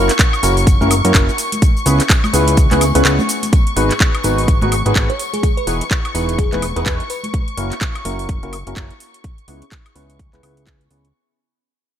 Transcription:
Already playing: analog synth bass F#1, synth stab A#3 C#4 E4 F#4 A#4, violin section C#6
0.09 clap, closed hi-hat, tambourine, cabasa
0.19 kick, clap, closed hi-hat, cabasa
0.33 cabasa, high woodblock
0.43 analog synth bass F#1, synth stab A#3 C#4 E4 F#4 A#4, open hi-hat, tambourine, cabasa
0.57 open hi-hat, tambourine, cabasa
0.67 kick, closed hi-hat, tambourine, cabasa
0.81 analog synth bass F#1, synth stab A#3 C#4 E4 F#4 A#4, high conga, cabasa
0.91 open hi-hat, tambourine, cabasa, high woodblock
1.05 analog synth bass F#2, synth stab A#3 C#4 E4 F#4 A#4, closed hi-hat, tambourine, cabasa
1.14 analog synth bass F#1, synth stab A#3 C#4 F#4, kick, clap, closed hi-hat, tambourine, cabasa
1.29 cabasa
1.38 open hi-hat, tambourine, cabasa
1.52 closed hi-hat, tambourine, high conga, cabasa
1.62 kick, closed hi-hat, tambourine, cabasa
1.77 cabasa
1.86 analog synth bass C#2, synth stab C#3 B3 C#4 E4 G#4 B4, open hi-hat, tambourine, cabasa
2.00 clap, closed hi-hat, tambourine, cabasa
2.10 kick, clap, closed hi-hat, tambourine, cabasa
2.24 tambourine, high conga, cabasa, high woodblock
2.33 analog synth bass C#2, synth stab C#3 B3 C#4 E4 G#4 B4, open hi-hat, tambourine, cabasa
2.47 closed hi-hat, tambourine, cabasa
2.57 kick, closed hi-hat, tambourine, cabasa
2.71 analog synth bass C#2, synth stab C#3 B3 C#4 E4 G#4 B4, clap, open hi-hat, tambourine, high conga, cabasa
2.81 open hi-hat, tambourine, cabasa, high woodblock
2.95 analog synth bass C#2, synth stab C#3 B3 C#4 E4 G#4 B4, closed hi-hat, tambourine, cabasa
3.05 analog synth bass C#2, synth stab C#3 B3 C#4 E4 G#4 B4, clap, closed hi-hat, tambourine, cabasa
3.18 tambourine, high conga, cabasa
3.29 open hi-hat, tambourine, cabasa
3.43 closed hi-hat, tambourine, high conga, cabasa
3.53 violin section C#6, kick, closed hi-hat, tambourine
3.67 closed hi-hat
3.76 analog synth bass G#1, synth stab G#2 B3 D#4 F#4 G#4 B4, open hi-hat, tambourine
3.91 clap, closed hi-hat, tambourine
4.00 kick, clap, closed hi-hat, tambourine
4.15 closed hi-hat, high woodblock
4.24 analog synth bass G#1, synth stab G#2 B3 D#4 F#4 G#4 B4, open hi-hat, tambourine
4.38 open hi-hat, tambourine
4.48 kick, closed hi-hat, tambourine
4.62 analog synth bass G#1, synth stab G#2 B3 D#4 F#4 G#4 B4, closed hi-hat, high conga
4.72 open hi-hat, tambourine, high woodblock
4.85 analog synth bass G#1, synth stab G#2 B3 D#4 F#4 G#4 B4, closed hi-hat, tambourine
4.96 analog synth bass G#1, kick, clap, closed hi-hat
5.10 fm electric piano C#5, closed hi-hat
5.19 open hi-hat, tambourine
5.33 fm electric piano G#4, closed hi-hat, tambourine, high conga
5.43 kick, closed hi-hat, tambourine
5.57 fm electric piano B4, closed hi-hat
5.67 analog synth bass E1, synth stab E3 B3 D#4 E4 G#4 B4, open hi-hat, tambourine
5.81 closed hi-hat, tambourine
5.91 kick, clap, closed hi-hat
6.05 closed hi-hat, high woodblock
6.15 analog synth bass E1, synth stab E3 B3 D#4 E4 G#4 B4, open hi-hat, tambourine
6.29 closed hi-hat, tambourine
6.38 fm electric piano G#4, kick, closed hi-hat, tambourine
6.52 analog synth bass E1, synth stab E3 B3 D#4 E4 G#4 B4, clap, closed hi-hat, high conga
6.62 open hi-hat, tambourine, high woodblock
6.76 analog synth bass E1, synth stab E3 B3 D#4 E4 G#4 B4, fm electric piano B4, closed hi-hat, tambourine
6.86 analog synth bass E1, synth stab E3 B3 E4 B4, kick, clap, closed hi-hat, tambourine
7.00 closed hi-hat
7.10 fm electric piano B4, open hi-hat, tambourine
7.24 closed hi-hat, tambourine, high conga
7.34 kick, closed hi-hat
7.48 closed hi-hat
7.57 analog synth bass F#1, synth stab A#3 C#4 E4 F#4 A#4, open hi-hat
7.72 clap, closed hi-hat
7.81 kick, clap, closed hi-hat
7.95 closed hi-hat, high woodblock
8.05 analog synth bass F#1, synth stab A#3 C#4 E4 F#4 A#4, open hi-hat
8.19 open hi-hat
8.29 kick, closed hi-hat
8.43 analog synth bass F#1, synth stab A#3 C#4 E4 F#4 A#4, closed hi-hat
8.53 open hi-hat, high woodblock
8.67 analog synth bass F#1, synth stab A#3 C#4 E4 F#4 A#4, closed hi-hat
8.77 analog synth bass F#1, kick, clap, closed hi-hat
8.90 closed hi-hat
9.00 open hi-hat
9.14 closed hi-hat
9.24 kick, closed hi-hat
9.38 closed hi-hat
9.48 analog synth bass C#2, synth stab C#3 B3 C#4 E4 G#4 B4, open hi-hat
9.62 closed hi-hat
9.72 kick, clap, closed hi-hat
9.86 closed hi-hat, high woodblock
9.95 analog synth bass C#2, synth stab C#3 B3 C#4 E4 G#4 B4, open hi-hat
10.10 closed hi-hat
10.19 kick, closed hi-hat
10.33 analog synth bass C#2, synth stab C#3 B3 C#4 E4 G#4 B4, clap, closed hi-hat
10.43 analog synth bass C#2, synth stab C#3 B3 C#4 E4 G#4 B4, open hi-hat, high woodblock
10.57 closed hi-hat
10.67 kick, clap, closed hi-hat
10.81 closed hi-hat
10.91 analog synth bass C#2, synth stab C#3 B3 C#4 E4 G#4 B4, open hi-hat
11.05 closed hi-hat

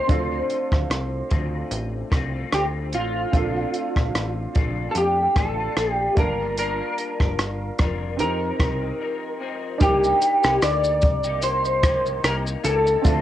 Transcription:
Already playing: clean electric guitar C5
0.07 analog synth bass D2, clean electric guitar D3 A3 C4 F4, upright piano C4 D4 F4, kick, closed hi-hat
0.12 upright piano A4
0.50 closed hi-hat
0.72 analog synth bass D2, kick, cross-stick
0.90 analog synth bass C2, cross-stick, closed hi-hat
1.29 analog synth bass D2, clean electric guitar D3 A3 C4 F4, kick, closed hi-hat
1.71 analog synth bass A1, closed hi-hat
2.10 analog synth bass C2, clean electric guitar D3 A3 C4 F4, kick, cross-stick, closed hi-hat
2.33 clean electric guitar A3 C4 F4
2.51 analog synth bass D2, clean electric guitar D3 A3 C4 F4 G4, cross-stick, closed hi-hat
2.92 analog synth bass A1, clean electric guitar D3 A3 C4 F4, closed hi-hat
3.32 analog synth bass A#1, clean electric guitar A3 D4 F4, upright piano C4 D4 F4, kick, closed hi-hat
3.37 upright piano A4
3.74 closed hi-hat
3.96 analog synth bass A#1, kick, cross-stick
4.15 analog synth bass A1, cross-stick, closed hi-hat
4.54 analog synth bass A#1, clean electric guitar A#2 A3 D4 F4, kick, closed hi-hat
4.91 analog synth bass F2, clean electric guitar A4, closed hi-hat
4.97 clean electric guitar G4
5.35 analog synth bass A1, clean electric guitar A#2 A3 D4 F4 A4, kick, cross-stick, closed hi-hat
5.57 clean electric guitar A3 D4 F4
5.76 analog synth bass A#1, clean electric guitar A#2 A3 D4 F4, cross-stick, closed hi-hat
5.93 clean electric guitar G4
6.15 analog synth bass G1, clean electric guitar G3 D4 F4 A#4, upright piano A3 D4 F4, kick, closed hi-hat
6.20 upright piano A#3 A5
6.57 clean electric guitar G3 D4 F4 A#4, closed hi-hat
6.98 closed hi-hat
7.20 analog synth bass G1, kick, cross-stick
7.39 analog synth bass G1, cross-stick, closed hi-hat
7.78 analog synth bass F1, clean electric guitar G3 D4 F4 A#4, kick, cross-stick, closed hi-hat
8.17 analog synth bass F2, clean electric guitar F3 C4 D#4 A#4, upright piano C4 D#4 G4, closed hi-hat
8.22 upright piano A#4
8.59 analog synth bass C2, clean electric guitar F3 C4 D#4 A#4, kick, cross-stick, closed hi-hat
8.81 clean electric guitar C4 D#4 A#4
8.99 clean electric guitar F3 C4 D#4 A#4
9.39 clean electric guitar F3 C4 D#4 A#4
9.78 analog synth bass C2, clean electric guitar C3 A#3 D#4 G4, upright piano D4 D#4 G4, kick, closed hi-hat, shaker
9.82 upright piano A#3, clean electric guitar G4
10.04 shaker
10.22 closed hi-hat, shaker
10.43 analog synth bass C2, clean electric guitar A#3 D#4 G4, cross-stick, shaker
10.62 analog synth bass D2, clean electric guitar D5, cross-stick, closed hi-hat, shaker
10.84 shaker
11.02 analog synth bass C2, kick, closed hi-hat, shaker
11.24 clean electric guitar A#3 D#4 G4, shaker
11.42 clean electric guitar C5, closed hi-hat, shaker
11.65 shaker
11.83 clean electric guitar C3 A#3 D#4 G4, kick, cross-stick, closed hi-hat, shaker
12.06 shaker
12.24 analog synth bass C2, clean electric guitar C3 A#3 D#4 G4 A#4, cross-stick, closed hi-hat, shaker
12.47 shaker
12.64 analog synth bass C#2, clean electric guitar C3 A#3 D#4 G4 A4, closed hi-hat, shaker
12.87 shaker
13.02 analog synth bass D2, clean electric guitar D3 C4, upright piano C4 D4 F4, kick, closed hi-hat, shaker
13.06 upright piano A3, clean electric guitar F4 A4

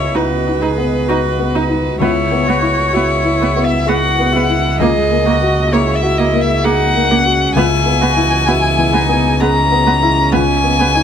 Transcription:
Already playing: felt piano C#2 B3 D#5, double bass C#2, analog synth pad B3 F#4 D#5, cello E4, violin C#5
0.15 viola D#4, felt piano E4, cello F#4, violin B4
0.47 felt piano D#4
0.62 viola D#4, cello G#4
0.78 felt piano B3
1.08 viola D#4, cello F#4, felt piano F#4
1.39 felt piano B3
1.55 viola D#4, cello D#4
1.69 felt piano D#4
2.00 felt piano C#2, double bass C#2, viola B3, analog synth pad E4 G#4, cello E4, violin C#5
2.32 felt piano B3
2.47 viola B3, cello F#4
2.62 felt piano E4
2.93 viola B3, cello E4, felt piano F#4
3.25 felt piano E4
3.42 viola B3
3.56 felt piano B3
3.64 violin E5
3.87 viola B3, cello F#4, felt piano G#4, violin F#5
4.19 felt piano B3
4.33 viola B3, cello E4
4.50 felt piano E4
4.80 felt piano C#2, analog synth pad A#3 F#4, viola A#3, cello G#4, violin D#5
5.11 felt piano A#3
5.26 viola A#3, cello F#4
5.42 felt piano F#4
5.72 viola A#3, cello E4, felt piano G#4, violin C#5
5.96 violin E5
6.03 felt piano F#4
6.18 viola A#3, violin D#5
6.33 felt piano A#3
6.41 violin E5
6.64 viola A#3, cello D#4, felt piano G#4, violin F#5
6.95 felt piano A#3
7.10 viola A#3, cello C#4
7.26 felt piano F#4
7.55 felt piano C#2, double bass C#2, analog synth pad E3 B3 G#4, viola B3, cello E4, violin G#5
7.86 felt piano B3
8.02 viola B3, cello F#4
8.17 felt piano E4
8.47 viola B3, cello E4, felt piano F#4
8.79 felt piano E3
8.93 viola B3, cello D#4
9.09 felt piano B3
9.40 viola B3, cello C#4, felt piano G#4, violin A#5
9.72 felt piano B3
9.87 viola B3
10.03 felt piano E4
10.32 felt piano C#2, viola B3, analog synth pad F#4 D#5, violin G#5
10.64 felt piano B3
10.80 viola B3
10.95 felt piano D#4

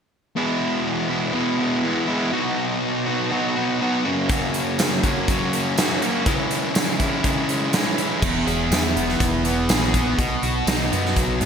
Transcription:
0.36 distorted electric guitar E2 B2 E3 G#3 B3 E4
1.09 distorted electric guitar E3 G#3 B3 E4
1.34 distorted electric guitar E2 B2 E3 G#3 B3 E4
1.58 distorted electric guitar E3 G#3 B3 E4
1.82 distorted electric guitar E3 G#3 B3 E4
2.07 distorted electric guitar E3 G#3 B3 E4
2.32 distorted electric guitar B2 F#3 B3 D#4 F#4
3.06 distorted electric guitar B3 D#4 F#4
3.31 distorted electric guitar B2 F#3 B3 D#4 F#4
3.56 distorted electric guitar B3 D#4 F#4
3.80 distorted electric guitar F#3 B3 D#4 F#4
4.05 distorted electric guitar F#2 C#3 F#3 A#3 C#4 F#4
4.29 distorted electric guitar F#2 C#3 F#3 A#3 C#4 F#4, kick, closed hi-hat
4.54 closed hi-hat
4.79 snare, closed hi-hat, tambourine
5.03 distorted electric guitar F#3 A#3 C#4 F#4, kick, closed hi-hat
5.28 distorted electric guitar F#2 C#3 F#3 A#3 C#4 F#4, kick, closed hi-hat
5.53 distorted electric guitar F#3 A#3 C#4 F#4, closed hi-hat
5.77 distorted electric guitar F#3 A#3 C#4 F#4, snare, closed hi-hat, tambourine
6.01 distorted electric guitar F#3 A#3 C#4 F#4, closed hi-hat
6.26 distorted electric guitar C#3 E3 G#3 C#4 E4, kick, closed hi-hat
6.51 closed hi-hat
6.75 snare, closed hi-hat, tambourine
7.00 distorted electric guitar G#3 C#4 E4, kick, closed hi-hat
7.24 distorted electric guitar C#3 E3 G#3 C#4 E4, kick, closed hi-hat
7.49 distorted electric guitar G#3 C#4 E4, closed hi-hat
7.73 distorted electric guitar E3 G#3 C#4 E4, snare, closed hi-hat, tambourine
7.98 distorted electric guitar G#3 C#4 E4, closed hi-hat
8.22 fingered electric bass E1, distorted electric guitar E2, kick, crash
8.47 fingered electric bass E1, distorted electric guitar G#4, closed hi-hat
8.71 fingered electric bass E2, distorted electric guitar E4, snare, closed hi-hat, tambourine
8.96 fingered electric bass E1, distorted electric guitar B3, closed hi-hat
9.09 snare
9.20 fingered electric bass E1, distorted electric guitar E3, kick, closed hi-hat
9.44 distorted electric guitar B3, closed hi-hat
9.69 fingered electric bass A#1, distorted electric guitar G#4, snare, closed hi-hat, tambourine
9.94 distorted electric guitar B3, kick, closed hi-hat
10.18 fingered electric bass B1, distorted electric guitar B2, kick, closed hi-hat
10.43 fingered electric bass B1, distorted electric guitar F#4, closed hi-hat
10.67 fingered electric bass B1, distorted electric guitar D#4, snare, closed hi-hat, tambourine
10.92 fingered electric bass F#2, distorted electric guitar B3, closed hi-hat
11.06 snare
11.16 fingered electric bass B1, distorted electric guitar F#3, kick, closed hi-hat
11.41 fingered electric bass G#2, distorted electric guitar B3, closed hi-hat

